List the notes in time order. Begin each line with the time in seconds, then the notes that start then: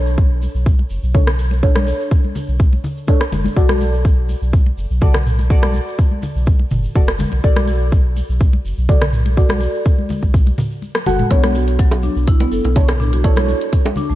Already playing: B1 D4 A4 C#5
0.06 shaker
0.17 kick, shaker
0.42 muted conga, shaker
0.55 B1, shaker
0.66 kick, shaker
0.79 muted conga
0.90 F#1, shaker
1.03 B1, shaker
1.14 D4 A4 C#5, kick, muted conga, low conga, shaker
1.27 cross-stick, low conga
1.39 shaker
1.51 muted conga, shaker
1.63 D4 A4 C#5, kick, shaker
1.76 cross-stick, high conga
1.87 muted conga, shaker
2.00 shaker
2.11 kick, shaker
2.24 high conga
2.35 muted conga, low conga, shaker
2.48 B1, shaker
2.59 kick, shaker
2.72 muted conga, shaker
2.84 low conga, shaker
2.97 shaker
3.07 D4 A4 C#5, kick, muted conga, shaker
3.21 cross-stick
3.32 F#1, high conga, low conga, shaker
3.44 muted conga, high conga, shaker
3.57 B1 F#4 A4 D5, kick, shaker
3.69 cross-stick, high conga
3.80 muted conga, shaker
3.94 shaker
4.05 kick, shaker
4.29 muted conga, shaker
4.42 B1, shaker
4.53 kick, shaker
4.66 muted conga
4.78 F#1, shaker
4.91 B1, shaker
5.01 F#4 A4 D5, kick, muted conga, low conga, shaker
5.14 cross-stick, low conga
5.26 mid tom, shaker
5.39 muted conga, shaker
5.50 F#4 A4 D5, kick, shaker
5.63 cross-stick, high conga
5.74 muted conga, shaker
5.88 shaker
5.99 kick, shaker
6.11 high conga
6.22 muted conga, low conga, shaker
6.36 B1, shaker
6.46 kick, shaker
6.59 muted conga
6.71 F#1, mid tom, low conga, shaker
6.84 shaker
6.95 F#1 F#4 A4 D5, kick, muted conga, shaker
7.08 cross-stick
7.19 high conga, low conga, shaker
7.32 B1, muted conga, high conga, shaker
7.43 B1 F#4 A4 D5, kick, shaker
7.56 cross-stick, high conga
7.68 muted conga, shaker
7.81 shaker
7.92 kick, shaker
8.16 muted conga, shaker
8.29 B1, shaker
8.40 kick, shaker
8.53 muted conga
8.65 F#1, shaker
8.78 B1, shaker
8.89 F#4 A4 D5, kick, muted conga, low conga, shaker
9.02 cross-stick, low conga
9.13 mid tom, shaker
9.26 muted conga, shaker
9.37 F#4 A4 D5, kick, shaker
9.49 cross-stick, high conga
9.61 muted conga, shaker
9.74 shaker
9.85 kick, shaker
9.98 high conga
10.09 muted conga, high conga, low conga, shaker
10.22 B1, kick, high conga, shaker
10.34 kick, shaker
10.47 muted conga, shaker
10.58 mid tom, low conga, shaker
10.71 shaker
10.82 muted conga, shaker
10.95 cross-stick, high tom, shaker
11.06 F#1 F#4 A4 F#5, mid tom, high conga, low conga, shaker
11.19 mid tom, muted conga, high conga, shaker
11.31 B1 B3 D4 A4 C#5, kick, closed hi-hat, low bongo, shaker
11.43 cross-stick, closed hi-hat, high conga
11.55 F#4, muted conga, shaker
11.67 closed hi-hat, shaker
11.79 F#3, kick, closed hi-hat, shaker
11.91 closed hi-hat, high bongo
12.02 D4, muted conga, shaker
12.16 B1, shaker
12.27 E4, kick, closed hi-hat, shaker
12.40 B3, closed hi-hat, low bongo, muted conga
12.52 F#1 A4, shaker
12.64 B1, closed hi-hat, low bongo, shaker
12.76 D4 A4 C#5, kick, closed hi-hat, high bongo, muted conga, low conga, shaker
12.88 cross-stick, closed hi-hat, high bongo, low conga
13.00 D4, mid tom, shaker
13.12 F#4, closed hi-hat, muted conga, shaker
13.24 D4 E4 A4 C#5, kick, closed hi-hat, low bongo, shaker
13.36 cross-stick, closed hi-hat, high conga
13.48 muted conga, shaker
13.61 closed hi-hat, shaker
13.73 kick, closed hi-hat, shaker
13.85 closed hi-hat, high bongo, high conga
13.96 D4, muted conga, low conga, shaker
14.10 B1 A3, shaker